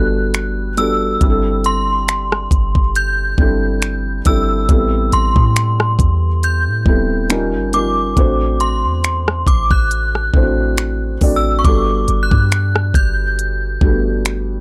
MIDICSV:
0, 0, Header, 1, 5, 480
1, 0, Start_track
1, 0, Tempo, 869565
1, 669, Time_signature, 4, 2, 24, 8
1, 8061, End_track
2, 0, Start_track
2, 0, Title_t, "Synth bell"
2, 0, Program_c, 0, 98
2, 0, Note_on_c, 0, 90, 106
2, 430, Note_on_c, 0, 88, 101
2, 454, Note_off_c, 0, 90, 0
2, 916, Note_on_c, 0, 84, 93
2, 924, Note_off_c, 0, 88, 0
2, 1636, Note_on_c, 0, 91, 110
2, 1654, Note_off_c, 0, 84, 0
2, 2355, Note_on_c, 0, 88, 109
2, 2374, Note_off_c, 0, 91, 0
2, 2834, Note_on_c, 0, 84, 92
2, 2846, Note_off_c, 0, 88, 0
2, 3556, Note_on_c, 0, 91, 98
2, 3573, Note_off_c, 0, 84, 0
2, 4273, Note_on_c, 0, 86, 95
2, 4294, Note_off_c, 0, 91, 0
2, 4750, Note_on_c, 0, 84, 89
2, 4765, Note_off_c, 0, 86, 0
2, 5230, Note_on_c, 0, 86, 91
2, 5244, Note_off_c, 0, 84, 0
2, 5360, Note_on_c, 0, 90, 98
2, 5363, Note_off_c, 0, 86, 0
2, 6057, Note_off_c, 0, 90, 0
2, 6273, Note_on_c, 0, 88, 88
2, 6396, Note_on_c, 0, 85, 70
2, 6399, Note_off_c, 0, 88, 0
2, 6429, Note_on_c, 0, 86, 96
2, 6430, Note_off_c, 0, 85, 0
2, 6750, Note_on_c, 0, 90, 96
2, 6759, Note_off_c, 0, 86, 0
2, 7148, Note_on_c, 0, 91, 96
2, 7161, Note_off_c, 0, 90, 0
2, 7846, Note_off_c, 0, 91, 0
2, 8061, End_track
3, 0, Start_track
3, 0, Title_t, "Felt piano"
3, 0, Program_c, 1, 0
3, 0, Control_c, 1, 64, 127
3, 0, Note_on_c, 1, 55, 63
3, 0, Note_on_c, 1, 59, 59
3, 0, Note_on_c, 1, 62, 58
3, 0, Note_on_c, 1, 66, 62
3, 0, Note_on_c, 1, 69, 69
3, 384, Note_off_c, 1, 55, 0
3, 386, Note_off_c, 1, 59, 0
3, 387, Note_off_c, 1, 62, 0
3, 389, Note_off_c, 1, 66, 0
3, 391, Note_off_c, 1, 69, 0
3, 427, Note_on_c, 1, 55, 74
3, 430, Note_on_c, 1, 59, 69
3, 434, Note_on_c, 1, 62, 70
3, 437, Note_on_c, 1, 66, 64
3, 440, Note_on_c, 1, 69, 78
3, 645, Note_off_c, 1, 55, 0
3, 647, Note_off_c, 1, 59, 0
3, 649, Note_off_c, 1, 62, 0
3, 651, Note_off_c, 1, 66, 0
3, 652, Note_off_c, 1, 69, 0
3, 666, Note_on_c, 1, 55, 77
3, 671, Note_on_c, 1, 60, 72
3, 674, Note_on_c, 1, 62, 65
3, 677, Control_c, 1, 64, 0
3, 677, Note_on_c, 1, 64, 69
3, 681, Note_on_c, 1, 67, 69
3, 714, Note_off_c, 1, 67, 0
3, 716, Note_on_c, 1, 69, 86
3, 771, Control_c, 1, 64, 127
3, 1538, Note_off_c, 1, 55, 0
3, 1540, Note_off_c, 1, 60, 0
3, 1542, Note_off_c, 1, 62, 0
3, 1543, Note_off_c, 1, 64, 0
3, 1563, Note_off_c, 1, 69, 0
3, 1869, Note_on_c, 1, 55, 65
3, 1872, Note_on_c, 1, 60, 59
3, 1875, Note_on_c, 1, 62, 59
3, 1879, Note_on_c, 1, 64, 63
3, 1882, Note_on_c, 1, 69, 71
3, 2304, Note_off_c, 1, 55, 0
3, 2306, Note_off_c, 1, 60, 0
3, 2307, Note_off_c, 1, 62, 0
3, 2309, Note_off_c, 1, 64, 0
3, 2311, Note_off_c, 1, 69, 0
3, 2349, Note_on_c, 1, 55, 73
3, 2351, Note_on_c, 1, 60, 63
3, 2355, Note_on_c, 1, 62, 68
3, 2359, Note_on_c, 1, 64, 68
3, 2362, Note_on_c, 1, 69, 79
3, 2566, Note_off_c, 1, 55, 0
3, 2568, Note_off_c, 1, 60, 0
3, 2569, Note_off_c, 1, 62, 0
3, 2571, Note_off_c, 1, 64, 0
3, 2573, Note_off_c, 1, 69, 0
3, 2589, Note_on_c, 1, 55, 77
3, 2592, Note_on_c, 1, 59, 70
3, 2595, Note_on_c, 1, 60, 70
3, 2596, Control_c, 1, 64, 0
3, 2598, Note_on_c, 1, 64, 68
3, 2602, Note_on_c, 1, 69, 82
3, 2682, Control_c, 1, 64, 127
3, 3459, Note_off_c, 1, 55, 0
3, 3461, Note_off_c, 1, 59, 0
3, 3462, Note_off_c, 1, 60, 0
3, 3464, Note_off_c, 1, 64, 0
3, 3466, Note_off_c, 1, 69, 0
3, 3786, Note_on_c, 1, 55, 66
3, 3789, Note_on_c, 1, 59, 64
3, 3793, Note_on_c, 1, 60, 63
3, 3797, Note_on_c, 1, 64, 61
3, 3799, Note_on_c, 1, 69, 74
3, 4018, Note_off_c, 1, 55, 0
3, 4026, Note_on_c, 1, 55, 84
3, 4029, Note_off_c, 1, 59, 0
3, 4030, Note_on_c, 1, 61, 77
3, 4031, Note_off_c, 1, 60, 0
3, 4032, Note_on_c, 1, 63, 71
3, 4033, Note_off_c, 1, 64, 0
3, 4034, Note_off_c, 1, 69, 0
3, 4036, Note_on_c, 1, 65, 75
3, 4037, Control_c, 1, 64, 0
3, 4039, Note_on_c, 1, 70, 88
3, 4138, Control_c, 1, 64, 127
3, 4245, Note_off_c, 1, 55, 0
3, 4247, Note_off_c, 1, 61, 0
3, 4248, Note_off_c, 1, 63, 0
3, 4250, Note_off_c, 1, 65, 0
3, 4252, Note_off_c, 1, 70, 0
3, 4269, Note_on_c, 1, 55, 73
3, 4272, Note_on_c, 1, 61, 64
3, 4276, Note_on_c, 1, 63, 67
3, 4279, Note_on_c, 1, 65, 68
3, 4283, Note_on_c, 1, 70, 80
3, 4487, Note_off_c, 1, 55, 0
3, 4488, Note_off_c, 1, 61, 0
3, 4490, Note_off_c, 1, 63, 0
3, 4492, Note_off_c, 1, 65, 0
3, 4493, Note_off_c, 1, 70, 0
3, 4507, Note_on_c, 1, 57, 80
3, 4511, Note_on_c, 1, 60, 65
3, 4514, Note_on_c, 1, 62, 69
3, 4515, Control_c, 1, 64, 0
3, 4517, Note_on_c, 1, 66, 74
3, 4521, Note_on_c, 1, 72, 82
3, 4623, Control_c, 1, 64, 127
3, 5378, Note_off_c, 1, 57, 0
3, 5380, Note_off_c, 1, 60, 0
3, 5382, Note_off_c, 1, 62, 0
3, 5383, Note_off_c, 1, 66, 0
3, 5385, Note_off_c, 1, 72, 0
3, 5708, Note_on_c, 1, 57, 63
3, 5712, Note_on_c, 1, 60, 61
3, 5715, Note_on_c, 1, 62, 62
3, 5719, Note_on_c, 1, 64, 48
3, 5722, Note_on_c, 1, 72, 73
3, 5753, Note_off_c, 1, 64, 0
3, 5754, Note_on_c, 1, 66, 61
3, 6143, Note_off_c, 1, 57, 0
3, 6146, Note_off_c, 1, 60, 0
3, 6147, Note_off_c, 1, 62, 0
3, 6151, Note_off_c, 1, 72, 0
3, 6167, Note_off_c, 1, 66, 0
3, 6188, Note_on_c, 1, 57, 70
3, 6192, Note_on_c, 1, 60, 64
3, 6194, Note_on_c, 1, 62, 65
3, 6199, Note_on_c, 1, 66, 66
3, 6202, Note_on_c, 1, 74, 83
3, 6406, Note_off_c, 1, 57, 0
3, 6408, Note_off_c, 1, 60, 0
3, 6409, Note_off_c, 1, 62, 0
3, 6411, Note_off_c, 1, 66, 0
3, 6413, Note_off_c, 1, 74, 0
3, 6428, Note_on_c, 1, 55, 75
3, 6432, Note_on_c, 1, 59, 66
3, 6435, Note_on_c, 1, 62, 68
3, 6437, Control_c, 1, 64, 0
3, 6439, Note_on_c, 1, 66, 68
3, 6442, Note_on_c, 1, 69, 83
3, 6528, Control_c, 1, 64, 127
3, 7299, Note_off_c, 1, 55, 0
3, 7301, Note_off_c, 1, 59, 0
3, 7302, Note_off_c, 1, 62, 0
3, 7304, Note_off_c, 1, 66, 0
3, 7306, Note_off_c, 1, 69, 0
3, 7626, Note_on_c, 1, 55, 64
3, 7629, Note_on_c, 1, 57, 47
3, 7632, Note_on_c, 1, 62, 59
3, 7636, Note_on_c, 1, 66, 61
3, 7639, Note_on_c, 1, 69, 71
3, 7664, Note_on_c, 1, 59, 63
3, 7668, Note_off_c, 1, 57, 0
3, 8061, Note_off_c, 1, 55, 0
3, 8061, Note_off_c, 1, 59, 0
3, 8061, Note_off_c, 1, 62, 0
3, 8061, Note_off_c, 1, 66, 0
3, 8061, Note_off_c, 1, 69, 0
3, 8061, End_track
4, 0, Start_track
4, 0, Title_t, "808-style bass"
4, 0, Program_c, 2, 38
4, 0, Note_on_c, 2, 31, 98
4, 646, Note_off_c, 2, 31, 0
4, 670, Note_on_c, 2, 31, 105
4, 1367, Note_off_c, 2, 31, 0
4, 1387, Note_on_c, 2, 31, 110
4, 1849, Note_off_c, 2, 31, 0
4, 1867, Note_on_c, 2, 31, 103
4, 2329, Note_off_c, 2, 31, 0
4, 2352, Note_on_c, 2, 31, 103
4, 2581, Note_off_c, 2, 31, 0
4, 2590, Note_on_c, 2, 33, 114
4, 2820, Note_off_c, 2, 33, 0
4, 2830, Note_on_c, 2, 33, 102
4, 2954, Note_off_c, 2, 33, 0
4, 2960, Note_on_c, 2, 45, 102
4, 3295, Note_off_c, 2, 45, 0
4, 3307, Note_on_c, 2, 40, 105
4, 3681, Note_on_c, 2, 45, 99
4, 3689, Note_off_c, 2, 40, 0
4, 3785, Note_off_c, 2, 45, 0
4, 3787, Note_on_c, 2, 27, 105
4, 4162, Note_on_c, 2, 31, 101
4, 4170, Note_off_c, 2, 27, 0
4, 4493, Note_off_c, 2, 31, 0
4, 4510, Note_on_c, 2, 33, 103
4, 4882, Note_on_c, 2, 40, 105
4, 4890, Note_off_c, 2, 33, 0
4, 5213, Note_off_c, 2, 40, 0
4, 5227, Note_on_c, 2, 33, 103
4, 5689, Note_off_c, 2, 33, 0
4, 5707, Note_on_c, 2, 33, 103
4, 6169, Note_off_c, 2, 33, 0
4, 6192, Note_on_c, 2, 33, 104
4, 6421, Note_off_c, 2, 33, 0
4, 6430, Note_on_c, 2, 31, 108
4, 6660, Note_off_c, 2, 31, 0
4, 6670, Note_on_c, 2, 31, 104
4, 6794, Note_off_c, 2, 31, 0
4, 6799, Note_on_c, 2, 43, 99
4, 7135, Note_off_c, 2, 43, 0
4, 7145, Note_on_c, 2, 31, 103
4, 7608, Note_off_c, 2, 31, 0
4, 7626, Note_on_c, 2, 31, 99
4, 8061, Note_off_c, 2, 31, 0
4, 8061, End_track
5, 0, Start_track
5, 0, Title_t, "Drums"
5, 187, Note_on_c, 9, 42, 74
5, 191, Note_on_c, 9, 26, 115
5, 243, Note_off_c, 9, 42, 0
5, 246, Note_off_c, 9, 26, 0
5, 427, Note_on_c, 9, 42, 69
5, 483, Note_off_c, 9, 42, 0
5, 667, Note_on_c, 9, 42, 61
5, 668, Note_on_c, 9, 36, 111
5, 723, Note_off_c, 9, 42, 0
5, 724, Note_off_c, 9, 36, 0
5, 907, Note_on_c, 9, 42, 58
5, 962, Note_off_c, 9, 42, 0
5, 1150, Note_on_c, 9, 42, 79
5, 1152, Note_on_c, 9, 26, 114
5, 1205, Note_off_c, 9, 42, 0
5, 1208, Note_off_c, 9, 26, 0
5, 1282, Note_on_c, 9, 37, 110
5, 1337, Note_off_c, 9, 37, 0
5, 1385, Note_on_c, 9, 36, 99
5, 1390, Note_on_c, 9, 42, 72
5, 1441, Note_off_c, 9, 36, 0
5, 1445, Note_off_c, 9, 42, 0
5, 1519, Note_on_c, 9, 36, 92
5, 1574, Note_off_c, 9, 36, 0
5, 1631, Note_on_c, 9, 42, 71
5, 1686, Note_off_c, 9, 42, 0
5, 1865, Note_on_c, 9, 36, 96
5, 1921, Note_off_c, 9, 36, 0
5, 2108, Note_on_c, 9, 42, 69
5, 2111, Note_on_c, 9, 26, 123
5, 2163, Note_off_c, 9, 42, 0
5, 2166, Note_off_c, 9, 26, 0
5, 2347, Note_on_c, 9, 42, 76
5, 2350, Note_on_c, 9, 36, 86
5, 2402, Note_off_c, 9, 42, 0
5, 2405, Note_off_c, 9, 36, 0
5, 2588, Note_on_c, 9, 42, 63
5, 2589, Note_on_c, 9, 36, 109
5, 2643, Note_off_c, 9, 42, 0
5, 2644, Note_off_c, 9, 36, 0
5, 2829, Note_on_c, 9, 42, 63
5, 2884, Note_off_c, 9, 42, 0
5, 2958, Note_on_c, 9, 36, 103
5, 3013, Note_off_c, 9, 36, 0
5, 3069, Note_on_c, 9, 42, 80
5, 3072, Note_on_c, 9, 26, 112
5, 3125, Note_off_c, 9, 42, 0
5, 3127, Note_off_c, 9, 26, 0
5, 3201, Note_on_c, 9, 37, 111
5, 3257, Note_off_c, 9, 37, 0
5, 3305, Note_on_c, 9, 36, 96
5, 3310, Note_on_c, 9, 42, 74
5, 3360, Note_off_c, 9, 36, 0
5, 3365, Note_off_c, 9, 42, 0
5, 3551, Note_on_c, 9, 42, 68
5, 3606, Note_off_c, 9, 42, 0
5, 3785, Note_on_c, 9, 36, 97
5, 3840, Note_off_c, 9, 36, 0
5, 4028, Note_on_c, 9, 42, 71
5, 4031, Note_on_c, 9, 26, 123
5, 4083, Note_off_c, 9, 42, 0
5, 4087, Note_off_c, 9, 26, 0
5, 4268, Note_on_c, 9, 42, 73
5, 4323, Note_off_c, 9, 42, 0
5, 4509, Note_on_c, 9, 36, 109
5, 4509, Note_on_c, 9, 42, 61
5, 4564, Note_off_c, 9, 36, 0
5, 4564, Note_off_c, 9, 42, 0
5, 4748, Note_on_c, 9, 42, 60
5, 4803, Note_off_c, 9, 42, 0
5, 4990, Note_on_c, 9, 42, 79
5, 4993, Note_on_c, 9, 26, 110
5, 5046, Note_off_c, 9, 42, 0
5, 5048, Note_off_c, 9, 26, 0
5, 5122, Note_on_c, 9, 37, 113
5, 5177, Note_off_c, 9, 37, 0
5, 5225, Note_on_c, 9, 36, 98
5, 5231, Note_on_c, 9, 42, 72
5, 5280, Note_off_c, 9, 36, 0
5, 5286, Note_off_c, 9, 42, 0
5, 5358, Note_on_c, 9, 36, 90
5, 5413, Note_off_c, 9, 36, 0
5, 5471, Note_on_c, 9, 42, 69
5, 5526, Note_off_c, 9, 42, 0
5, 5604, Note_on_c, 9, 37, 69
5, 5659, Note_off_c, 9, 37, 0
5, 5706, Note_on_c, 9, 36, 94
5, 5761, Note_off_c, 9, 36, 0
5, 5948, Note_on_c, 9, 42, 69
5, 5951, Note_on_c, 9, 26, 115
5, 6003, Note_off_c, 9, 42, 0
5, 6006, Note_off_c, 9, 26, 0
5, 6188, Note_on_c, 9, 46, 80
5, 6190, Note_on_c, 9, 36, 84
5, 6243, Note_off_c, 9, 46, 0
5, 6245, Note_off_c, 9, 36, 0
5, 6428, Note_on_c, 9, 36, 117
5, 6428, Note_on_c, 9, 42, 58
5, 6484, Note_off_c, 9, 36, 0
5, 6484, Note_off_c, 9, 42, 0
5, 6668, Note_on_c, 9, 42, 61
5, 6723, Note_off_c, 9, 42, 0
5, 6797, Note_on_c, 9, 36, 98
5, 6853, Note_off_c, 9, 36, 0
5, 6910, Note_on_c, 9, 42, 77
5, 6912, Note_on_c, 9, 26, 117
5, 6965, Note_off_c, 9, 42, 0
5, 6968, Note_off_c, 9, 26, 0
5, 7041, Note_on_c, 9, 37, 102
5, 7096, Note_off_c, 9, 37, 0
5, 7144, Note_on_c, 9, 36, 93
5, 7150, Note_on_c, 9, 42, 74
5, 7200, Note_off_c, 9, 36, 0
5, 7205, Note_off_c, 9, 42, 0
5, 7390, Note_on_c, 9, 42, 66
5, 7445, Note_off_c, 9, 42, 0
5, 7625, Note_on_c, 9, 36, 103
5, 7680, Note_off_c, 9, 36, 0
5, 7867, Note_on_c, 9, 42, 74
5, 7870, Note_on_c, 9, 26, 118
5, 7922, Note_off_c, 9, 42, 0
5, 7926, Note_off_c, 9, 26, 0
5, 8061, End_track
0, 0, End_of_file